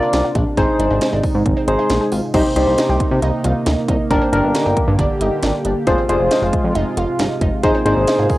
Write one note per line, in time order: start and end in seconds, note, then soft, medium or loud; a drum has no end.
0.00 2.30 C3 medium
0.00 0.56 A#3 medium
0.00 0.56 D4 medium
0.00 0.14 D4 medium
0.00 0.25 F4 medium
0.00 0.25 A#4 medium
0.00 0.25 D5 loud
0.13 0.22 C2 loud
0.13 snare loud
0.13 closed hi-hat medium
0.24 0.30 F4 medium
0.35 0.44 A#1 medium
0.35 0.47 D4 medium
0.35 kick medium
0.35 closed hi-hat medium
0.57 0.66 G#1 loud
0.57 2.32 G#3 medium
0.57 0.69 C4 loud
0.57 2.32 D#4 medium
0.57 1.03 D#4 medium
0.57 1.03 G#4 medium
0.57 1.03 C5 medium
0.57 kick loud
0.57 closed hi-hat medium
0.79 0.88 G#1 loud
0.79 0.85 D4 medium
0.79 closed hi-hat medium
0.91 0.99 G#1 loud
0.91 0.96 D4 medium
1.01 1.07 C4 medium
1.01 snare loud
1.01 closed hi-hat medium
1.13 1.21 G#1 loud
1.13 1.24 D4 medium
1.24 kick medium
1.24 open hi-hat soft
1.35 1.44 G#2 medium
1.46 1.55 G#1 loud
1.46 kick medium
1.46 closed hi-hat medium
1.57 1.68 C4 medium
1.68 1.77 G#1 loud
1.68 2.02 D#4 medium
1.68 2.02 G#4 medium
1.68 2.02 C5 loud
1.68 closed hi-hat medium
1.79 1.90 D#4 medium
1.90 1.99 A#1 loud
1.90 snare loud
1.90 closed hi-hat medium
2.01 2.07 G#4 medium
2.12 2.21 G#1 medium
2.12 2.23 F4 medium
2.12 open hi-hat medium
2.34 2.43 C2 loud
2.34 4.09 C3 medium
2.34 5.83 A#3 medium
2.34 4.09 D#4 medium
2.34 2.45 D#4 medium
2.34 2.40 D#4 loud
2.34 2.45 G4 medium
2.34 2.45 C5 medium
2.34 kick loud
2.34 closed hi-hat medium
2.34 crash loud
2.45 2.51 C4 medium
2.56 2.65 C2 medium
2.56 2.68 D4 medium
2.56 3.02 D#4 medium
2.56 3.02 G4 medium
2.56 3.02 C5 medium
2.56 closed hi-hat medium
2.67 2.76 C2 loud
2.78 2.84 D#4 medium
2.78 snare loud
2.78 closed hi-hat medium
2.89 2.98 C2 loud
2.89 3.01 G4 medium
3.00 kick medium
3.00 closed hi-hat medium
3.11 3.20 C3 loud
3.22 3.31 C2 loud
3.22 3.34 D#4 medium
3.22 closed hi-hat medium
3.44 3.53 C2 loud
3.44 3.56 F4 medium
3.44 closed hi-hat medium
3.66 3.75 D2 medium
3.66 3.78 D#4 medium
3.66 snare loud
3.66 closed hi-hat medium
3.88 3.97 C2 medium
3.88 4.00 D#4 medium
3.88 kick loud
3.88 closed hi-hat medium
4.11 4.19 G1 loud
4.11 5.85 D3 medium
4.11 4.16 D4 loud
4.11 4.22 D4 medium
4.11 5.85 G4 medium
4.11 4.22 G4 medium
4.11 4.22 A#4 loud
4.11 kick loud
4.11 closed hi-hat medium
4.22 4.27 C4 medium
4.33 4.41 G1 loud
4.33 4.78 D4 medium
4.33 4.44 D4 medium
4.33 4.78 G4 medium
4.33 4.78 A#4 medium
4.33 closed hi-hat medium
4.44 4.53 G1 loud
4.55 4.60 D#4 medium
4.55 snare loud
4.55 closed hi-hat medium
4.66 4.75 G1 medium
4.66 4.77 G4 medium
4.77 kick medium
4.77 closed hi-hat medium
4.88 4.97 G2 loud
4.99 5.08 G1 loud
4.99 5.10 D4 medium
4.99 kick medium
4.99 closed hi-hat medium
5.21 5.30 G1 loud
5.21 5.32 D#4 medium
5.21 closed hi-hat medium
5.43 5.52 G#1 loud
5.43 5.54 D4 medium
5.43 snare loud
5.43 closed hi-hat medium
5.65 5.74 G1 loud
5.65 5.77 D4 medium
5.65 closed hi-hat medium
5.87 5.96 F1 loud
5.87 8.38 C3 medium
5.87 7.62 G#3 medium
5.87 5.93 D4 loud
5.87 7.62 F4 medium
5.87 5.98 F4 medium
5.87 5.98 G#4 medium
5.87 5.98 C5 loud
5.87 kick loud
5.87 closed hi-hat medium
5.98 6.04 C4 medium
6.09 6.18 F1 medium
6.09 6.21 D4 medium
6.09 6.55 F4 medium
6.09 6.55 G#4 medium
6.09 6.55 C5 medium
6.09 closed hi-hat medium
6.20 6.29 F1 loud
6.31 6.37 D#4 medium
6.31 snare loud
6.31 closed hi-hat medium
6.42 6.51 F1 loud
6.42 6.54 F4 medium
6.53 kick medium
6.53 closed hi-hat medium
6.64 6.73 F2 loud
6.75 6.84 F1 loud
6.75 6.87 D#4 medium
6.75 closed hi-hat medium
6.97 7.06 F1 loud
6.97 7.09 F4 medium
6.97 closed hi-hat medium
7.19 7.28 G1 loud
7.19 7.31 D#4 medium
7.19 snare loud
7.19 closed hi-hat medium
7.41 7.50 F1 medium
7.41 7.53 D#4 medium
7.41 kick loud
7.41 closed hi-hat medium
7.63 7.72 G#1 loud
7.63 8.38 A#3 medium
7.63 7.69 D#4 loud
7.63 7.75 D#4 medium
7.63 7.75 G#4 medium
7.63 8.38 G#4 medium
7.63 7.75 C5 loud
7.63 kick loud
7.63 closed hi-hat medium
7.74 7.80 C4 medium
7.85 7.94 G#1 loud
7.85 7.97 D4 medium
7.85 8.31 D#4 medium
7.85 8.31 G#4 medium
7.85 8.31 C5 medium
7.85 closed hi-hat medium
7.97 8.05 G#1 loud
8.07 8.13 D#4 medium
8.07 snare loud
8.07 closed hi-hat medium
8.19 8.27 G#1 loud
8.19 8.30 F4 medium
8.30 kick medium
8.30 open hi-hat medium